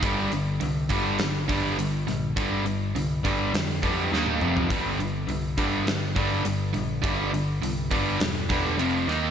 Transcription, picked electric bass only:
X:1
M:4/4
L:1/8
Q:1/4=103
K:Gm
V:1 name="Picked electric bass" clef=bass
G,,,2 C,, G,,, G,,,2 G,,, B,,, | G,,,2 C,, G,,, F,,2 E,, F,,, | G,,,2 C,, G,,, G,,,2 G,,, B,,, | G,,,2 C,, G,,, =E,,,2 F,,, _E,, |]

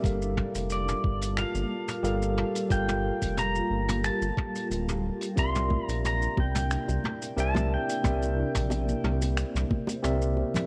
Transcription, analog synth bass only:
X:1
M:4/4
L:1/16
Q:"Swing 16ths" 1/4=90
K:Gdor
V:1 name="Analog synth bass" clef=bass
G,,,2 z F,,,2 z G,,,2 z G,,, z2 G,,,2 z2 | G,,,2 z F,,,2 z G,,,2 z G,,, z2 D,,,2 z2 | C,,2 z B,,,2 z C,,2 z C,, z2 C,,2 z2 | C,,2 z B,,,2 z C,,2 z C,, z2 C,,2 z2 |]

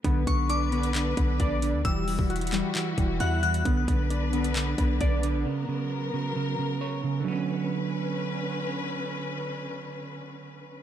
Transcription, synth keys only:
X:1
M:4/4
L:1/8
Q:1/4=133
K:Bm
V:1 name="Synth keys"
B, B, D B, B, B, d2 | G, G, F G, G, G, f2 | B, B, D B, B, B, d2 | z8 |
z8 | z8 |]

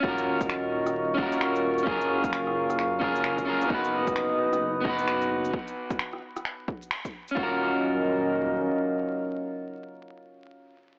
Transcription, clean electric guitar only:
X:1
M:4/4
L:1/8
Q:"Swing 16ths" 1/4=131
K:Ebm
V:1 name="Clean electric guitar"
[DFGB]4- [DFGB] [DFGB]3 | [DFAB]4- [DFAB] [DFAB]2 [DFAB] | [=B,^D^F=B]4- [B,DFB] [B,DFB]3 | z8 |
[DFGB]8- | [DFGB]8 |]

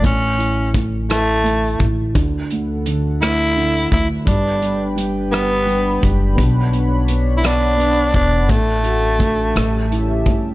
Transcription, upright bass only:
X:1
M:6/8
L:1/8
Q:3/8=57
K:D
V:1 name="Upright bass" clef=bass
A,,,4- A,,, A,,, | D,,4- D,, D,, | G,,,4- G,,, F,,, | B,,,4- B,,, E,,, |
A,,,3 A,,,2 G,,, |]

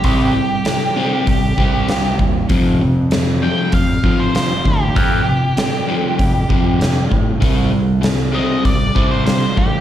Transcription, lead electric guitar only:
X:1
M:4/4
L:1/16
Q:1/4=98
K:Fmix
V:1 name="Lead electric guitar"
G12- G2 z2 | z6 g2 f3 c c2 G2- | G12- G2 z2 | z6 e2 d3 c c2 G2 |]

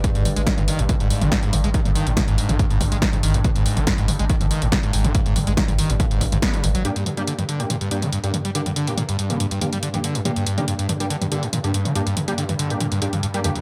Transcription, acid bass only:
X:1
M:4/4
L:1/16
Q:1/4=141
K:Gm
V:1 name="Acid bass" clef=bass
_A,, A,, A,, _A, E, A,, E, A,, _C, A,, A,, E, A,, A,, A,, A, | E, _A,, E, A,, _C, A,, A,, E, A,, A,, A,, _A, E, A,, E, A,, | _C, _A,, A,, E, A,, A,, A,, _A, E, A,, E, A,, C, A,, A,, E, | _A,, A,, A,, _A, E, A,, E, A,, _C, A,, _A,,, A,, _C ^C, ^F,, ^F, |
G,, G,, G,, G, D, G,, D, G,, B,, G,, G,, D, G,, G,, G,, G, | D, G,, D, G,, B,, G,, G,, D, G,, G,, G,, G, D, G,, D, G,, | B,, G,, G,, D, G,, G,, G,, G, D, G,, D, G,, B,, G,, G,, D, | G,, G,, G,, G, D, G,, D, G,, B,, G,, G,, G,, G,, G, F,, F,, |]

